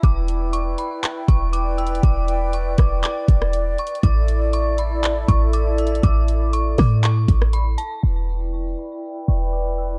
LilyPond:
<<
  \new Staff \with { instrumentName = "Synth bell" } { \time 4/4 \key e \dorian \tempo 4 = 120 d'''4 cis'''8 b''4 cis'''8 d'''8 e'''8 | d'''4 cis'''8 d'''8 d'''4. cis'''8 | d'''4 cis'''8 b''4 cis'''8 d'''8 e'''8 | d'''4 cis'''8 d'''8 cis'''4 b''8 a''8 |
d'''4 cis'''8 b''4 cis'''8 d'''8 e'''8 | }
  \new Staff \with { instrumentName = "Flute section" } { \time 4/4 \key e \dorian <e' b' d'' g''>1~ | <e' b' d'' g''>1 | <e' a'>1~ | <e' a'>1 |
<e' b' d'' g''>1 | }
  \new Staff \with { instrumentName = "808-style bass" } { \clef bass \time 4/4 \key e \dorian e,,4. r4 e,,4. | e,,4. e,,8 r8 e,,4 r8 | a,,2~ a,,8 a,,4. | a,,4. a,4 a,,4 r8 |
e,,4. r4 e,,4. | }
  \new DrumStaff \with { instrumentName = "Drums" } \drummode { \time 4/4 <hh bd>8 hh8 hh8 hh8 <hc hh>8 <hh bd>8 \tuplet 3/2 { hh16 r16 r16 hh16 hh16 hh16 } | <hh bd>8 hh8 hh8 <hh bd ss>8 <hc hh>8 <hh bd>16 ss16 \tuplet 3/2 { hh16 r16 r16 hh16 hh16 hh16 } | <hh bd>8 hh8 hh8 hh8 <hc hh>8 <hh bd>8 \tuplet 3/2 { hh16 r16 r16 hh16 hh16 hh16 } | <hh bd>8 hh8 hh8 <hho bd ss>8 <hc hh>8 <hh bd>16 ss16 hh8 hh8 |
r4 r4 r4 r4 | }
>>